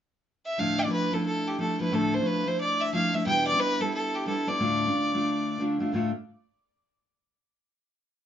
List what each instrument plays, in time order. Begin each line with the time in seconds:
0.46 fiddle E5
0.58 steel-string acoustic guitar D2 A2 F3 A3 D4 E4, fiddle F5
0.79 fiddle D5
0.85 steel-string acoustic guitar F3 A3 D4 E4
0.92 fiddle B4
1.12 steel-string acoustic guitar F3 A3 D4 E4, fiddle A4
1.26 fiddle A4
1.47 fiddle G4
1.58 steel-string acoustic guitar F3 A3 D4 E4, fiddle A4
1.80 steel-string acoustic guitar F3 A3 D4 E4, fiddle B4
1.91 steel-string acoustic guitar D2 A2 F3 A3 D4 E4, fiddle A4
2.14 fiddle C5
2.19 steel-string acoustic guitar F3 A3 D4 E4
2.27 fiddle B4
2.46 steel-string acoustic guitar F3 A3 D4 E4, fiddle C5
2.60 fiddle D5
2.81 fiddle E5
2.93 steel-string acoustic guitar F3 A3 D4 E4, fiddle F5
3.14 steel-string acoustic guitar F3 A3 D4 E4, fiddle E5
3.26 steel-string acoustic guitar E2 B2 G3 B3 D4 E4, fiddle G5
3.47 fiddle D5
3.53 steel-string acoustic guitar G3 B3 D4 E4
3.60 fiddle B4
3.80 steel-string acoustic guitar G3 B3 D4 E4, fiddle A4
3.94 fiddle A4
4.15 fiddle G4
4.26 steel-string acoustic guitar G3 B3 D4 E4, fiddle A4
4.47 steel-string acoustic guitar G3 B3 D4 E4, fiddle D5
4.60 steel-string acoustic guitar D2 A2 D3 A3 D4 F4
4.86 steel-string acoustic guitar D3 A3 D4 F4
5.14 steel-string acoustic guitar D3 A3 D4 F4
5.60 steel-string acoustic guitar D3 A3 D4 F4
5.79 steel-string acoustic guitar D3 A3 D4 F4
5.92 steel-string acoustic guitar D2 A2 D3 A3 D4 F4